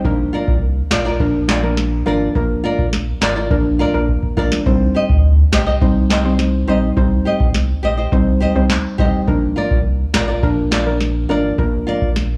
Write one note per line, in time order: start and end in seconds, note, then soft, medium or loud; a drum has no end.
0.05 0.27 A#1 loud
0.05 0.58 F3 medium
0.05 0.58 A#3 medium
0.05 0.58 D4 medium
0.05 0.58 A#4 loud
0.05 kick loud
0.33 0.54 F4 medium
0.33 0.55 A#4 medium
0.33 0.55 D5 medium
0.48 0.82 C2 loud
0.48 kick medium
0.91 2.02 A#1 loud
0.91 1.06 F4 medium
0.91 1.05 A#4 medium
0.91 1.04 D5 medium
0.91 kick medium
0.91 snare loud
0.91 clap medium
1.05 1.23 F4 medium
1.05 1.22 A#4 medium
1.05 1.22 D5 medium
1.20 1.60 F3 medium
1.20 1.60 A#3 medium
1.20 1.60 D4 medium
1.20 1.60 A#4 loud
1.20 kick loud
1.48 1.69 F4 medium
1.48 1.70 A#4 medium
1.48 1.70 D5 medium
1.48 snare loud
1.48 clap loud
1.63 2.03 F3 medium
1.63 2.03 A#3 medium
1.63 2.03 D4 medium
1.63 2.03 A#4 medium
1.77 snare medium
2.06 2.29 G#1 medium
2.06 2.33 F3 medium
2.06 2.33 A#3 medium
2.06 2.33 D4 medium
2.06 2.27 F4 medium
2.06 2.33 A#4 medium
2.06 2.28 A#4 medium
2.06 2.28 D5 medium
2.35 2.58 A#1 loud
2.35 2.88 F3 loud
2.35 2.88 A#3 medium
2.35 2.89 D4 medium
2.35 2.89 A#4 loud
2.35 kick loud
2.64 2.85 F4 medium
2.64 2.85 A#4 medium
2.64 2.86 D5 medium
2.79 3.13 A#1 medium
2.79 kick medium
2.93 snare medium
3.21 3.52 G#1 medium
3.21 3.36 F4 medium
3.21 3.36 A#4 medium
3.21 3.35 D5 loud
3.21 snare loud
3.21 clap medium
3.36 3.53 F4 soft
3.36 3.53 A#4 medium
3.36 3.53 D5 medium
3.50 3.85 A#1 medium
3.50 3.90 F3 medium
3.50 3.90 A#3 medium
3.50 3.91 D4 medium
3.50 3.91 A#4 loud
3.50 kick loud
3.79 4.00 F4 medium
3.79 4.01 A#4 medium
3.79 4.01 D5 medium
3.94 4.17 A#1 medium
3.94 4.13 F3 medium
3.94 4.14 A#3 medium
3.94 4.14 D4 medium
3.94 4.14 A#4 medium
4.08 kick medium
4.23 kick medium
4.37 4.49 A#1 medium
4.37 4.57 F3 medium
4.37 4.57 A#3 medium
4.37 4.57 D4 medium
4.37 4.58 F4 medium
4.37 4.57 A#4 medium
4.37 4.59 A#4 medium
4.37 4.59 D5 medium
4.37 kick medium
4.52 snare medium
4.66 4.89 C2 loud
4.66 5.19 G3 medium
4.66 5.19 C4 medium
4.66 5.19 D#4 medium
4.66 5.19 C5 loud
4.66 kick loud
4.95 5.16 G4 medium
4.95 5.16 C5 medium
4.95 5.17 D#5 medium
5.09 5.44 D2 medium
5.09 kick medium
5.52 6.64 C2 medium
5.52 5.67 G4 medium
5.52 5.66 C5 loud
5.52 5.65 D#5 medium
5.52 kick medium
5.52 snare loud
5.52 clap medium
5.66 5.84 G4 medium
5.66 5.84 C5 medium
5.66 5.83 D#5 medium
5.81 6.21 G3 medium
5.81 6.21 C4 medium
5.81 6.21 D#4 medium
5.81 6.21 C5 loud
5.81 kick loud
6.10 6.31 G4 medium
6.10 6.32 C5 medium
6.10 6.32 D#5 medium
6.10 snare loud
6.10 clap loud
6.25 6.65 G3 medium
6.25 6.65 C4 medium
6.25 6.65 D#4 medium
6.25 6.65 C5 medium
6.39 snare medium
6.67 6.91 A#1 medium
6.67 6.94 G3 medium
6.67 6.95 C4 medium
6.67 6.95 D#4 medium
6.67 6.89 G4 medium
6.67 6.95 C5 medium
6.67 6.89 C5 medium
6.67 6.90 D#5 medium
6.97 7.20 C2 loud
6.97 7.50 G3 loud
6.97 7.50 C4 medium
6.97 7.50 D#4 medium
6.97 7.50 C5 loud
6.97 kick loud
7.25 7.46 G4 medium
7.25 7.47 C5 medium
7.25 7.47 D#5 medium
7.40 7.74 C2 loud
7.40 kick medium
7.54 snare medium
7.83 8.06 A#1 medium
7.83 7.98 G4 medium
7.83 7.97 C5 medium
7.83 7.96 D#5 medium
7.97 8.15 G4 medium
7.97 8.14 C5 medium
7.97 8.14 D#5 medium
8.12 8.46 C2 medium
8.12 8.52 G3 medium
8.12 8.52 C4 medium
8.12 8.52 D#4 medium
8.12 8.52 C5 loud
8.12 kick loud
8.40 8.62 G4 medium
8.40 8.62 C5 medium
8.40 8.63 D#5 loud
8.55 8.78 C2 medium
8.55 8.75 G3 medium
8.55 8.75 C4 medium
8.55 8.75 D#4 medium
8.55 8.75 C5 medium
8.70 snare loud
8.70 clap medium
8.98 9.10 C2 medium
8.98 9.18 G3 medium
8.98 9.18 C4 medium
8.98 9.19 D#4 medium
8.98 9.19 G4 medium
8.98 9.20 C5 medium
8.98 9.19 C5 medium
8.98 9.20 D#5 loud
8.98 kick loud
9.27 9.50 A#1 loud
9.27 9.81 F3 loud
9.27 9.81 A#3 medium
9.27 9.81 D4 medium
9.27 9.81 A#4 loud
9.27 kick loud
9.56 9.77 F4 medium
9.56 9.78 A#4 medium
9.56 9.78 D5 medium
9.71 10.05 C2 medium
9.71 kick medium
10.14 11.25 A#1 loud
10.14 10.29 F4 medium
10.14 10.28 A#4 loud
10.14 10.27 D5 loud
10.14 kick medium
10.14 snare loud
10.14 clap medium
10.28 10.46 F4 medium
10.28 10.45 A#4 medium
10.28 10.45 D5 medium
10.43 10.83 F3 medium
10.43 10.83 A#3 medium
10.43 10.83 D4 medium
10.43 10.83 A#4 loud
10.43 kick loud
10.71 10.93 F4 medium
10.71 10.93 A#4 medium
10.71 10.93 D5 medium
10.71 snare loud
10.71 clap loud
10.86 11.26 F3 medium
10.86 11.26 A#3 medium
10.86 11.26 D4 medium
10.86 11.26 A#4 medium
11.01 snare medium
11.29 11.52 G#1 medium
11.29 11.56 F3 medium
11.29 11.56 A#3 medium
11.29 11.56 D4 medium
11.29 11.50 F4 medium
11.29 11.56 A#4 medium
11.29 11.51 A#4 medium
11.29 11.51 D5 loud
11.58 11.81 A#1 loud
11.58 12.11 F3 medium
11.58 12.11 A#3 medium
11.58 12.12 D4 medium
11.58 12.12 A#4 loud
11.58 kick loud
11.87 12.08 F4 medium
11.87 12.09 A#4 medium
11.87 12.09 D5 medium
12.02 12.36 A#1 loud
12.02 kick medium
12.16 snare medium